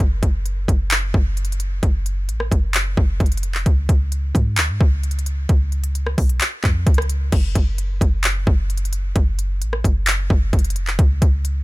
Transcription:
0.00 F#1, kick, closed hi-hat
0.23 F#1, kick, closed hi-hat
0.46 closed hi-hat
0.68 F#1, kick, closed hi-hat
0.91 clap, closed hi-hat
1.14 F#1, kick
1.37 closed hi-hat
1.45 closed hi-hat
1.52 closed hi-hat
1.60 closed hi-hat
1.83 F#1, kick, closed hi-hat
2.06 closed hi-hat
2.29 A1, closed hi-hat
2.40 cross-stick
2.52 F#1, kick, closed hi-hat
2.74 clap, closed hi-hat
2.97 F#1, kick
3.20 F#1, kick, closed hi-hat
3.26 closed hi-hat
3.32 closed hi-hat
3.37 closed hi-hat
3.43 F1, closed hi-hat
3.55 clap
3.66 C#2, kick, closed hi-hat
3.89 C#2, kick, closed hi-hat
4.12 closed hi-hat
4.35 G#2, kick, closed hi-hat
4.57 D2, clap, closed hi-hat
4.69 G#2
4.81 C#2, kick
5.03 closed hi-hat
5.11 closed hi-hat
5.19 closed hi-hat
5.26 closed hi-hat
5.49 C#2, kick, closed hi-hat
5.72 closed hi-hat
5.84 closed hi-hat
5.95 closed hi-hat
6.07 cross-stick
6.18 B1, kick, closed hi-hat, open hi-hat
6.29 closed hi-hat
6.41 clap, closed hi-hat
6.64 F2, kick, clap
6.87 C#2, kick, closed hi-hat
6.94 cross-stick, closed hi-hat
7.02 closed hi-hat
7.09 closed hi-hat
7.32 F#1, kick, closed hi-hat, crash
7.55 F#1, kick, closed hi-hat
7.78 closed hi-hat
8.01 F#1, kick, closed hi-hat
8.24 clap, closed hi-hat
8.47 F#1, kick
8.70 closed hi-hat
8.78 closed hi-hat
8.85 closed hi-hat
8.93 closed hi-hat
9.16 F#1, kick, closed hi-hat
9.39 closed hi-hat
9.61 A1, closed hi-hat
9.73 cross-stick
9.84 F#1, kick, closed hi-hat
10.07 clap, closed hi-hat
10.30 F#1, kick
10.53 F#1, kick, closed hi-hat
10.59 closed hi-hat
10.64 closed hi-hat
10.70 closed hi-hat
10.76 F1, closed hi-hat
10.87 clap
10.99 C#2, kick, closed hi-hat
11.22 C#2, kick, closed hi-hat
11.45 closed hi-hat

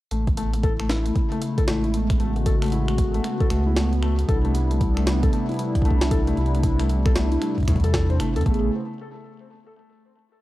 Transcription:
0.11 A1 C#3 G#3 A3 B3 E4, closed hi-hat
0.27 kick, closed hi-hat
0.37 A3, closed hi-hat
0.53 A3, closed hi-hat
0.63 A4, kick, closed hi-hat
0.80 A3, finger snap, closed hi-hat
0.89 E4, snare, closed hi-hat
1.06 A3, closed hi-hat
1.16 kick, closed hi-hat
1.32 A3, closed hi-hat
1.42 A3, closed hi-hat
1.58 A4, kick, closed hi-hat
1.68 A1 A3, snare, closed hi-hat
1.84 E4, closed hi-hat
1.94 A3, closed hi-hat
2.10 finger snap, kick, closed hi-hat
2.20 A1 A3 F#4, closed hi-hat
2.36 A3, closed hi-hat
2.46 A4, kick, closed hi-hat
2.62 A3, finger snap, closed hi-hat
2.64 closed hi-hat
2.66 closed hi-hat
2.68 closed hi-hat
2.70 closed hi-hat
2.72 E4, closed hi-hat
2.88 A3, finger snap, closed hi-hat
2.98 kick, closed hi-hat
3.14 A3, closed hi-hat
3.24 A3, finger snap, closed hi-hat
3.40 A4, kick, closed hi-hat
3.50 C#2 A3, finger snap, closed hi-hat
3.67 E4
3.76 A3, snare, closed hi-hat
3.93 closed hi-hat
4.03 A3, finger snap
4.19 A3, closed hi-hat
4.28 C2 C3 G3 D4 E4 A4, kick, closed hi-hat
4.45 A3, closed hi-hat
4.55 E4, closed hi-hat
4.71 A3, closed hi-hat
4.81 kick, closed hi-hat
4.97 A3, finger snap, closed hi-hat
5.07 A3, snare, closed hi-hat
5.23 A4, kick, closed hi-hat
5.33 A3, closed hi-hat
5.49 E4, closed hi-hat
5.52 closed hi-hat
5.54 closed hi-hat
5.57 closed hi-hat
5.59 A3, closed hi-hat
5.75 kick, closed hi-hat
5.82 C2 A3, kick, closed hi-hat
5.91 kick
6.01 A3, snare, closed hi-hat
6.11 A4, kick, closed hi-hat
6.27 A3, closed hi-hat
6.37 C2 E4, closed hi-hat
6.46 closed hi-hat
6.53 A3, closed hi-hat
6.63 kick, closed hi-hat
6.80 A3, finger snap, closed hi-hat
6.90 A3, closed hi-hat
7.06 A4, finger snap, kick, closed hi-hat
7.16 A3, snare, closed hi-hat
7.32 E4, closed hi-hat
7.42 A3, finger snap, closed hi-hat
7.58 kick, closed hi-hat
7.60 kick, closed hi-hat
7.63 closed hi-hat
7.65 E2 A2, finger snap, kick, closed hi-hat
7.68 closed hi-hat
7.72 closed hi-hat
7.76 kick, closed hi-hat
7.80 closed hi-hat
7.84 A4, closed hi-hat
7.94 A4, kick, snare, closed hi-hat
8.10 C4, closed hi-hat
8.20 G1 A3, finger snap, closed hi-hat
8.36 E2 A4, closed hi-hat
8.41 closed hi-hat
8.46 A1 C#3 A3 B3 E4 G#4, kick, closed hi-hat
8.54 closed hi-hat

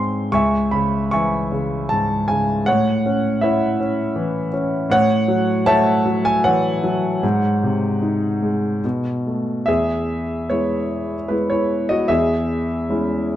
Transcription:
Already playing: G#2 C4 C#5 C6
0.32 C#2 E5 G#5 C#6
0.71 C#3 B5
1.11 E3 E5 G#5 C#6
1.52 C#3
1.89 G#2 A5
2.28 C#3 G#5
2.66 A2 C#5 F#5
3.06 C#4
3.41 E4 C#5 E5
3.80 C#4
4.16 E3
4.53 C#4
4.90 A2 C#5 F#5
5.28 F#3
5.66 A3 C#5 E5 A5
6.05 F#3
6.25 G#5
6.44 E3 C#5 F#5
6.84 F#3
7.23 G#2
7.63 C3
8.02 D#4
8.43 G#3
8.84 B2
9.27 A3
9.66 E2 G#4 E5
10.50 G#3 B3 E4 C#5
11.28 G#3 B3 E4 B4
11.50 E4 C#5
11.89 F#4 D#5
12.08 E2 G#4 E5
12.89 G#3 C#4 E4

